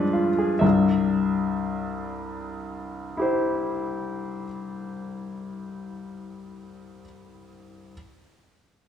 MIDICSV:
0, 0, Header, 1, 2, 480
1, 0, Start_track
1, 0, Key_signature, 0, "major"
1, 0, Tempo, 975610
1, 308, Time_signature, 6, 3, 24, 8
1, 309, Tempo, 852273
1, 4958, End_track
2, 0, Start_track
2, 0, Title_t, "Grand piano"
2, 0, Program_c, 0, 0
2, 0, Control_c, 0, 64, 127
2, 0, Note_on_c, 0, 43, 51
2, 0, Note_on_c, 0, 53, 37
2, 0, Note_on_c, 0, 56, 38
2, 0, Note_on_c, 0, 62, 39
2, 0, Note_on_c, 0, 71, 65
2, 64, Note_on_c, 0, 65, 40
2, 145, Note_off_c, 0, 62, 0
2, 189, Note_on_c, 0, 68, 39
2, 261, Note_off_c, 0, 65, 0
2, 286, Note_off_c, 0, 43, 0
2, 291, Note_on_c, 0, 76, 50
2, 300, Note_off_c, 0, 71, 0
2, 301, Note_on_c, 0, 36, 42
2, 302, Note_on_c, 0, 43, 41
2, 304, Note_off_c, 0, 68, 0
2, 322, Control_c, 0, 64, 0
2, 324, Note_off_c, 0, 53, 0
2, 324, Note_off_c, 0, 56, 0
2, 441, Control_c, 0, 64, 127
2, 1742, Note_on_c, 0, 64, 36
2, 1754, Note_on_c, 0, 67, 39
2, 1766, Note_on_c, 0, 72, 35
2, 2447, Note_off_c, 0, 76, 0
2, 2459, Note_off_c, 0, 36, 0
2, 2460, Note_off_c, 0, 43, 0
2, 3901, Note_off_c, 0, 64, 0
2, 3913, Note_off_c, 0, 67, 0
2, 3926, Note_off_c, 0, 72, 0
2, 4424, Control_c, 0, 64, 0
2, 4958, End_track
0, 0, End_of_file